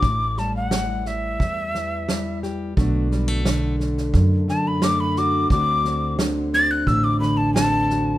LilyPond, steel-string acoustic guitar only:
\new Staff \with { instrumentName = "Steel-string acoustic guitar" } { \clef bass \time 4/4 \key d \mixolydian \tempo 4 = 88 << { r8 g4 g4. g8 g'8 | <d a d' fis'>8 g16 a8. a4. a8 fis'8 | <d c' d' fis'>8 c'4 c'4. c'8 fis'8 | } \\ { a,4 e4 e,8 e4. | b,4 d4 fis,8 d4. | d,4 d4 a,8 d4. | } >> }